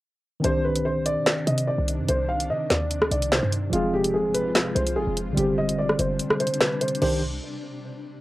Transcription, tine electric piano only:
0.40 3.67 D#3 medium
0.40 3.68 C4 medium
0.40 3.69 D4 medium
0.46 3.70 G4 medium
0.46 3.71 C5 medium
3.70 5.32 F3 medium
3.70 5.33 G#3 medium
3.70 5.34 C4 medium
3.75 5.35 G#4 medium
5.32 6.96 D3 medium
5.32 6.97 G3 medium
5.32 6.98 C4 medium
5.38 6.99 G4 medium
5.38 7.00 C5 medium
7.02 7.21 D#3 medium
7.02 7.21 D4 medium
7.02 7.21 G4 medium
7.02 7.21 C5 medium

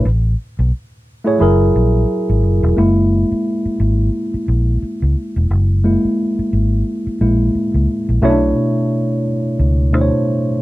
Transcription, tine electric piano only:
1.25 1.39 A3 medium
1.25 1.39 E4 medium
1.25 1.40 G#4 medium
1.25 1.41 C#5 medium
1.39 2.50 F#3 medium
1.39 2.50 E4 medium
1.39 2.51 G#4 medium
1.39 2.51 A#4 medium
2.77 3.75 G#3 medium
2.77 3.75 A#3 soft
2.77 3.75 E4 medium
5.84 7.20 G#3 medium
5.84 7.20 A#3 soft
5.84 7.21 E4 medium
7.21 7.51 G#3 soft
7.21 7.51 A#3 soft
7.21 7.51 E4 soft
8.22 9.24 B2 loud
8.22 9.25 A3 loud
8.22 8.30 C#4 medium
8.22 9.25 E4 medium
8.22 9.26 C#5 loud
8.30 9.28 D4 medium
9.92 10.46 B2 medium
9.92 10.46 A3 medium
9.92 10.47 D4 medium
9.92 10.47 E4 medium
9.92 10.01 C5 medium
10.01 10.51 C#5 medium

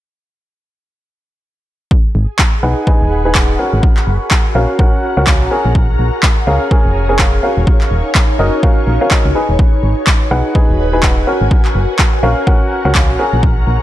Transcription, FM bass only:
2.15 2.26 G#1 loud
2.63 2.75 B1 medium
3.01 3.56 D#1 medium
3.73 3.81 G#1 loud
4.07 4.18 F#1 medium
4.55 4.67 A#1 medium
5.17 5.43 C#2 medium
5.41 5.49 A#1 loud
5.65 5.96 A#1 loud
5.99 6.11 A#1 medium
6.47 6.59 C#2 medium
6.85 7.40 F1 medium
7.57 7.65 D#1 loud
7.91 8.03 D#1 medium
8.39 8.51 F#1 medium
8.87 8.99 A#1 medium
9.25 9.33 C#2 medium
9.49 9.57 D#1 medium
9.83 9.94 G#1 medium
10.31 10.43 B1 medium
10.69 11.24 D#1 medium
11.41 11.49 G#1 loud
11.75 11.86 F#1 medium
12.23 12.34 A#1 medium
12.85 13.11 C#2 medium
13.09 13.17 A#1 loud
13.33 13.64 A#1 loud
13.67 13.78 A#1 medium

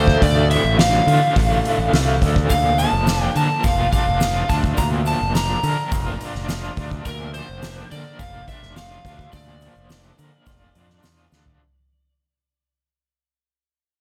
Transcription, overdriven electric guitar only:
0.00 0.21 D2 medium
0.00 0.78 D3 medium
0.00 1.08 A3 medium
0.00 1.07 F4 medium
0.22 2.50 D2 medium
0.50 1.93 A2 medium
0.79 1.65 D3 medium
1.07 3.35 F4 medium
1.36 1.93 A3 medium
1.65 2.21 D3 medium
1.94 2.51 A3 medium
2.22 5.72 D3 medium
2.50 3.93 A#2 medium
2.79 5.07 F3 medium
3.07 3.93 D4 medium
3.35 5.64 A#4 medium
3.64 4.21 F4 medium
3.93 4.50 D4 medium
4.22 5.92 F4 medium
4.50 5.35 D4 medium
4.79 6.21 A#2 medium
5.07 7.34 F3 medium
5.36 6.20 D4 medium
5.64 7.90 A#4 medium
5.92 6.48 F4 medium
6.21 6.76 D4 medium
6.48 8.19 F4 medium
6.77 7.62 D4 medium
7.05 8.48 A#2 medium
7.34 9.61 F3 medium
7.62 8.47 D4 medium
7.91 10.18 A#4 medium
8.19 8.75 F4 medium
8.48 9.04 D4 medium
8.76 10.18 F4 medium
9.05 9.89 D4 medium
9.34 10.75 A#2 medium
9.62 11.04 F3 medium
9.90 10.74 D4 medium
10.18 11.60 A#4 medium
10.47 11.02 F4 medium
10.75 11.31 D4 medium
11.03 11.60 F4 medium
11.32 11.60 D4 medium

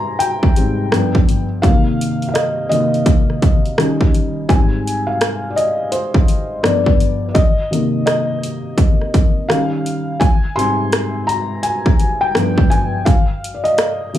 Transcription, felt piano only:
0.00 0.57 G#2 medium
0.00 0.57 G3 medium
0.00 0.57 C4 medium
0.00 0.94 G#5 loud
0.00 0.21 A#5 medium
0.00 0.93 C6 loud
0.19 1.67 G5 medium
0.57 0.89 G#2 medium
0.57 0.89 G3 soft
0.57 0.89 C4 medium
0.92 1.43 G2 medium
0.92 1.43 F3 medium
0.92 1.44 B3 medium
1.62 2.67 C3 medium
1.62 2.67 D#3 medium
1.62 2.67 A#3 medium
1.62 2.27 F5 loud
2.29 2.34 F5 medium
2.34 2.68 D#5 medium
2.70 3.03 C3 medium
2.70 3.03 D#3 soft
2.70 3.03 A#3 medium
2.70 4.09 D#5 medium
3.78 4.46 D#3 medium
3.78 4.46 G3 medium
3.78 4.46 C#4 medium
4.49 5.52 G#2 medium
4.49 5.53 G3 medium
4.49 5.53 C4 medium
4.49 5.09 G#5 medium
5.07 5.52 F5 medium
5.50 5.56 D5 medium
5.56 5.93 D#5 medium
5.92 6.66 C5 medium
6.63 7.31 G2 medium
6.63 7.32 F3 medium
6.63 7.32 B3 medium
6.63 7.27 D5 medium
7.29 7.34 D5 medium
7.34 8.04 D#5 medium
7.71 9.45 C3 medium
7.71 9.46 D#3 medium
7.71 9.46 A#3 medium
8.06 9.53 D#5 medium
9.48 10.17 D#3 medium
9.48 10.17 G3 medium
9.48 10.18 C#4 medium
9.48 10.16 F5 loud
10.20 10.53 G#5 loud
10.56 12.31 G#2 medium
10.56 12.31 G3 medium
10.56 12.32 C4 medium
10.56 11.30 C6 loud
11.27 11.64 A#5 loud
11.63 12.17 G#5 medium
12.21 12.72 G5 loud
12.35 13.03 G2 medium
12.35 13.03 F3 medium
12.35 13.03 B3 medium
12.70 13.07 G#5 medium
13.05 13.57 F5 medium
13.55 13.64 D5 medium
13.64 14.18 D#5 medium
14.14 14.18 C3 medium
14.14 14.18 D#3 soft
14.14 14.18 A#3 medium

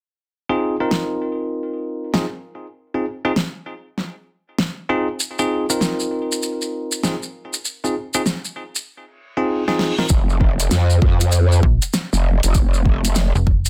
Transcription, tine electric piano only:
0.49 0.75 C4 medium
0.49 0.76 D#4 medium
0.49 0.76 F4 medium
0.49 0.75 G#4 medium
0.80 2.11 C4 medium
0.80 2.11 D#4 medium
0.80 2.11 F4 medium
0.80 2.11 A#4 medium
2.14 2.25 C4 medium
2.14 2.25 D#4 medium
2.14 2.25 F4 medium
2.14 2.25 G#4 medium
2.94 3.05 C4 medium
2.94 3.05 D#4 medium
2.94 3.05 F4 medium
2.94 3.05 G#4 medium
3.25 3.31 C4 medium
3.25 3.31 D#4 medium
3.25 3.31 F4 medium
3.25 3.31 G#4 loud
4.89 5.07 C4 medium
4.89 5.07 D#4 medium
4.89 5.07 F4 medium
4.89 5.07 G#4 loud
5.39 5.65 C4 medium
5.39 5.65 D#4 medium
5.39 5.65 F4 medium
5.39 5.65 G#4 loud
5.70 7.01 C4 medium
5.70 7.01 D#4 medium
5.70 7.01 F4 medium
5.70 7.01 A#4 medium
7.03 7.15 C4 medium
7.03 7.15 D#4 medium
7.03 7.15 F4 medium
7.03 7.15 G#4 medium
7.84 7.95 C4 medium
7.84 7.94 D#4 medium
7.84 7.95 F4 medium
7.84 7.95 G#4 medium
8.15 8.21 C4 medium
8.15 8.21 D#4 medium
8.15 8.21 F4 medium
8.15 8.21 G#4 loud
9.37 9.63 C4 medium
9.37 9.63 D#4 medium
9.37 9.63 F4 medium
9.37 9.63 G#4 medium
9.68 9.94 C4 medium
9.68 9.94 D#4 medium
9.68 9.94 F4 medium
9.68 9.94 G#4 medium
9.99 10.05 C4 medium
9.99 10.05 D#4 medium
9.99 10.05 F4 medium
9.99 10.05 A#4 medium

